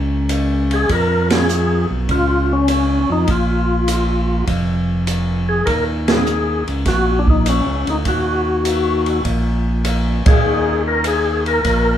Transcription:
Already playing: tonewheel organ C#2
0.29 hi-hat pedal, ride
0.71 tonewheel organ G#4, ride
0.89 tonewheel organ F2 A#4, kick, ride
1.30 tonewheel organ G#4, snare, ride
1.49 hi-hat pedal
1.91 tonewheel organ B1
2.09 tonewheel organ C#2 F4, kick, ride
2.53 tonewheel organ C#4
2.68 tonewheel organ C#4, hi-hat pedal, ride
3.01 tonewheel organ C#4
3.09 tonewheel organ F2 D#4
3.28 tonewheel organ A#1 F4, kick, ride
3.88 hi-hat pedal, ride
4.47 tonewheel organ F1, kick, ride
5.07 hi-hat pedal, ride
5.49 tonewheel organ G#4
5.66 tonewheel organ D#2 A#4, kick, ride
6.08 tonewheel organ G#4, snare, ride
6.26 hi-hat pedal
6.68 tonewheel organ C#2, ride
6.86 tonewheel organ A#1 F#4, kick, snare, ride
7.19 tonewheel organ D4
7.27 tonewheel organ D#4, kick
7.46 tonewheel organ C#4, hi-hat pedal, ride
7.67 tonewheel organ C#2
7.87 tonewheel organ D2 D#4, ride
8.05 tonewheel organ D#2 F#4, kick, ride
8.65 hi-hat pedal, ride
9.06 ride
9.25 tonewheel organ A#1, kick, ride
9.85 hi-hat pedal, ride
10.26 tonewheel organ A#1 G#4, kick, ride
10.45 tonewheel organ D#2
10.88 tonewheel organ A#4
11.04 tonewheel organ G#4, hi-hat pedal, ride
11.46 tonewheel organ A#4, ride
11.65 tonewheel organ A#1, kick, ride

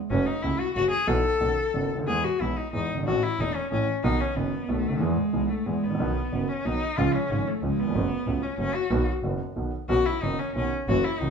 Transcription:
0.10 double bass F#1, upright piano F#2 C#3 F#3 A3 F#4, cello C#4
0.26 cello D#4
0.42 upright piano C#2 C#3 F#3 A3 F#4, double bass C#2, cello E4
0.59 cello F#4
0.75 double bass F#1, upright piano F#2 C#3 F#3 A3 F#4, cello F#4
0.91 cello G#4
1.07 upright piano B1 B2 E3 F#3 B3 F#4, double bass B1, cello A4
1.41 double bass B1, upright piano B1 B2 D#3 B3 C#4 F#4
1.74 upright piano F#1 F#2 D#3 B3 C#4 F#4, double bass F#1
1.91 double bass D2
1.95 upright piano C#2
1.99 upright piano D2
2.03 upright piano D#2, cello G#4
2.07 double bass E2, upright piano E2 E3 G#3 B3 G#4
2.24 cello F#4
2.40 double bass B1, upright piano B1 B2 E3 G#3 B3 G#4, cello E4
2.57 cello D#4
2.73 upright piano E2 E3 G#3 B3 G#4, double bass E2, cello D#4
2.90 double bass G1
2.94 upright piano F#1
2.98 upright piano G1
3.03 upright piano G#1, double bass A1, cello F#4
3.08 upright piano A1 A2 E3 A3 C#4 A4
3.23 cello E4
3.39 double bass E1, upright piano E1 E2 E3 A3 C#4 A4, cello D#4
3.55 cello C#4
3.71 upright piano A1 A2 E3 A3 C#4 A4, double bass A1, cello C#4
4.03 upright piano B1 B2 D#3 F#3 B3 F#4, double bass B1, cello D#4
4.20 cello C#4
4.36 upright piano F#1 F#2 D#3 F#3 B3 F#4, double bass F#1, cello B3
4.68 double bass B1, upright piano B1 B2 D#3 F#3 B3 F#4, cello A3
4.85 upright piano C#2, double bass D2
4.92 upright piano D2
4.97 upright piano D#2 E2 E3 G#3 B3 G#4, double bass E2
5.02 cello G#3
5.33 double bass B1, upright piano B1 B2 E3 G#3 B3 G#4
5.50 cello A3
5.66 upright piano E2 E3 G#3 B3 G#4, double bass E2, cello G#3
5.83 upright piano G#1, double bass A1, cello B3
5.91 upright piano A1
5.95 upright piano A#1
6.00 double bass B1, upright piano B1 B2 D#3 F#3 B3 F#4
6.32 upright piano F#1 F#2 D#3 F#3 B3 F#4, double bass F#1
6.49 cello C#4
6.65 upright piano B1 B2 D#3 F#3 B3 F#4, double bass B1, cello D#4
6.97 upright piano C#2 C#3 F3 G#3 F4, double bass C#2, cello F4
7.14 cello C#4
7.30 upright piano G#1 G#2 C#3 F3 G#3 F4, double bass G#1
7.47 cello A3
7.62 double bass C#2, upright piano C#2 C#3 F3 G#3 F4, cello G#3
7.80 upright piano D#2, cello B3
7.87 upright piano E2 F2
7.94 double bass F#1, upright piano F#2 C#3 F#3 A3 F#4
8.26 double bass C#2, upright piano C#2 C#3 F#3 A3 F#4
8.42 cello C#4
8.58 double bass F#1, upright piano F#2 C#3 F#3 A3 F#4, cello C#4
8.75 cello F#4
8.90 upright piano B1 B2 D#3 F#3 B3 F#4, double bass B1
9.23 double bass F#1, upright piano F#1 F#2 D#3 F#3 B3 F#4
9.56 upright piano B1 B2 D#3 F#3 B3 F#4, double bass B1
9.89 upright piano B1 B2 D#3 B3 C#4 F#4, double bass B1, cello F#4
10.06 cello E4
10.22 double bass F#1, upright piano F#1 F#2 D#3 B3 C#4 F#4, cello D#4
10.39 cello C#4
10.55 double bass B1, upright piano B1 B2 D#3 B3 C#4 F#4, cello C#4
10.87 double bass F#1, upright piano F#2 E3 F#3 A#3 C#4 F#4, cello F#4
11.04 cello E4
11.19 double bass C#2, upright piano C#2 C#3 E3 A#3 C#4 F#4, cello D#4

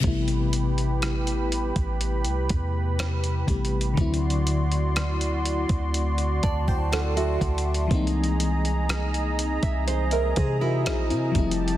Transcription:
0.00 808-style bass A1, fm electric piano C3 G3 A3, analog synth pad G4 B4 B5, kick, closed hi-hat
0.06 fm electric piano B3 E4
0.28 closed hi-hat
0.53 closed hi-hat
0.78 closed hi-hat
1.02 cross-stick, closed hi-hat
1.27 closed hi-hat
1.52 closed hi-hat
1.76 808-style bass A1, kick, closed hi-hat
2.01 closed hi-hat
2.25 808-style bass C2, closed hi-hat
2.49 808-style bass E2, kick, closed hi-hat
2.99 cross-stick, closed hi-hat
3.24 closed hi-hat
3.46 808-style bass A1, fm electric piano C3 G3 A3 B3 G4, kick, closed hi-hat
3.65 closed hi-hat
3.81 closed hi-hat
3.94 808-style bass D2, fm electric piano D3 F#3 A3, analog synth pad F#4 D5 C6, kick, closed hi-hat
3.99 fm electric piano C4 E4
4.14 closed hi-hat
4.30 closed hi-hat
4.47 closed hi-hat
4.72 closed hi-hat
4.96 cross-stick, closed hi-hat
5.21 closed hi-hat
5.45 closed hi-hat
5.69 808-style bass D2, kick, closed hi-hat
5.94 closed hi-hat
6.18 closed hi-hat
6.43 808-style bass D2, nylon-string guitar D5, fm electric piano A5, kick, closed hi-hat
6.68 nylon-string guitar C5, fm electric piano G5, kick
6.92 nylon-string guitar A4, fm electric piano F#5, cross-stick, closed hi-hat
7.17 nylon-string guitar F#4, fm electric piano E5, closed hi-hat
7.41 808-style bass D2, kick, closed hi-hat
7.58 closed hi-hat
7.74 closed hi-hat
7.87 808-style bass C2, fm electric piano E3 G#3 A#3, analog synth pad G#4 D#5 A#5, kick, closed hi-hat
7.93 fm electric piano C4 D#4
8.07 closed hi-hat
8.24 closed hi-hat
8.40 closed hi-hat
8.65 closed hi-hat
8.89 cross-stick, closed hi-hat
9.14 closed hi-hat
9.39 closed hi-hat
9.63 808-style bass C2, nylon-string guitar E5, kick, closed hi-hat
9.87 nylon-string guitar C5, closed hi-hat
10.11 nylon-string guitar A#4, fm electric piano C5 E5, closed hi-hat
10.36 808-style bass C3, nylon-string guitar G#4, fm electric piano G#4 C5, kick, closed hi-hat
10.61 nylon-string guitar E4, fm electric piano F#4 A#4
10.86 808-style bass A#1, fm electric piano G#4, cross-stick, closed hi-hat
11.10 808-style bass C3, fm electric piano C4 E4, closed hi-hat
11.31 808-style bass F1, fm electric piano F3 G3 A3, analog synth pad G4 A5, kick, closed hi-hat
11.37 fm electric piano C4 E4
11.51 closed hi-hat
11.68 closed hi-hat

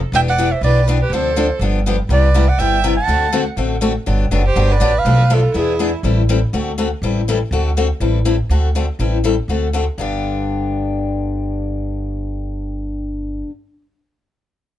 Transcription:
0.12 upright bass E1, steel-string acoustic guitar E3 B3 D4 G4, violin E5, clarinet G5
0.28 violin D5, clarinet F#5
0.38 steel-string acoustic guitar E3 B3 D4 G4
0.52 violin C5, clarinet E5
0.61 upright bass B1, steel-string acoustic guitar E3 B3 D4 G4, violin B4, clarinet D5
0.88 steel-string acoustic guitar E3 B3 D4 G4
1.01 violin G4, clarinet B4
1.10 upright bass D2, steel-string acoustic guitar D3 F3 C4, violin A4, clarinet C5
1.14 steel-string acoustic guitar D4 A4
1.36 steel-string acoustic guitar D3 F3 C4 D4 A4
1.59 upright bass G1, steel-string acoustic guitar D3 F3 B3 D4 G4
1.86 steel-string acoustic guitar D3 F3 B3 D4 G4
2.09 upright bass C2, steel-string acoustic guitar C3 G3 B3 E4 G4, violin B4, clarinet D5
2.34 steel-string acoustic guitar C3 G3 B3 E4 G4
2.48 violin D5, clarinet F#5
2.58 upright bass G1, steel-string acoustic guitar C3 G3 B3 E4 G4, violin E5, clarinet G5
2.84 steel-string acoustic guitar C3 G3 B3 E4 G4
2.97 violin F#5, clarinet A5
3.08 upright bass D2, steel-string acoustic guitar D3 A3 C4 F#4 A4
3.33 steel-string acoustic guitar D3 A3 C4 F#4 A4
3.56 upright bass A1, steel-string acoustic guitar D3 A3 C4 F#4 A4
3.81 steel-string acoustic guitar D3 A3 C4 F#4 A4
4.06 upright bass G1, steel-string acoustic guitar D3 F#3 B3 D4 G4
4.31 upright bass F#1, steel-string acoustic guitar D3 F#3 B3 D4 G4
4.46 violin G4, clarinet C5
4.56 upright bass G1, steel-string acoustic guitar D3 F#3 B3 D4 G4
4.72 violin B4, clarinet D5
4.80 upright bass A1, steel-string acoustic guitar D3 F#3 B3 D4 G4
4.96 violin B4, clarinet F5
5.05 upright bass B1, steel-string acoustic guitar B2 F3 A3 D4 A4
5.30 steel-string acoustic guitar B2 F3 A3 D4 A4, violin F4
5.34 clarinet A4
5.54 upright bass E2, steel-string acoustic guitar E3 B3 D4 G#4, violin E4, clarinet G#4
5.79 steel-string acoustic guitar E3 B3 D4 G#4
6.03 upright bass A1, steel-string acoustic guitar E3 G3 C4 E4 A4
6.29 steel-string acoustic guitar E3 G3 C4 E4 A4
6.53 upright bass D2, steel-string acoustic guitar D3 A3 C4 F#4 A4
6.78 steel-string acoustic guitar D3 A3 C4 F#4 A4
7.02 upright bass A1, steel-string acoustic guitar E3 G3 C4 E4 A4
7.28 steel-string acoustic guitar E3 G3 C4 E4 A4
7.51 upright bass D2, steel-string acoustic guitar D3 A3 C4 F#4 A4
7.77 steel-string acoustic guitar D3 A3 C4 F#4 A4
8.00 upright bass A1, steel-string acoustic guitar E3 G3 C4 E4 A4
8.25 steel-string acoustic guitar E3 G3 C4 E4 A4
8.49 upright bass D2, steel-string acoustic guitar D3 A3 C4 F#4 A4
8.75 steel-string acoustic guitar D3 A3 C4 F#4 A4
8.99 upright bass A1, steel-string acoustic guitar E3 G3 C4 E4 A4
9.24 steel-string acoustic guitar E3 G3 C4 E4 A4
9.48 upright bass D2, steel-string acoustic guitar D3 A3 C4 F#4 A4
9.73 steel-string acoustic guitar D3 A3 C4 F#4 A4
9.98 upright bass G1, steel-string acoustic guitar G2 D3 B3 D4 G4

